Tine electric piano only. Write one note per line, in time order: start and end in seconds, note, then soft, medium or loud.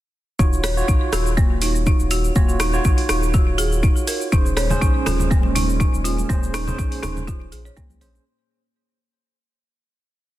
0.39 0.74 F4 medium
0.39 0.74 F#4 medium
0.39 0.74 C#5 medium
0.77 2.33 F4 loud
0.77 2.33 F#4 medium
0.77 2.33 C#5 loud
2.36 2.71 F4 medium
2.36 2.71 F#4 medium
2.36 2.71 C#5 medium
2.74 4.30 F4 medium
2.74 4.30 F#4 medium
2.74 4.30 C#5 loud
4.33 4.67 C#4 medium
4.33 4.67 G#4 medium
4.33 4.67 C5 loud
4.71 6.27 C#4 loud
4.71 6.27 G#4 medium
4.71 6.27 C5 loud
6.29 6.64 C#4 medium
6.29 6.64 G#4 medium
6.29 6.64 C5 loud
6.67 7.99 C#4 medium
6.67 7.99 G#4 medium
6.67 7.99 C5 loud
8.01 8.23 C#4 medium
8.01 8.23 G#4 medium
8.01 8.23 C5 medium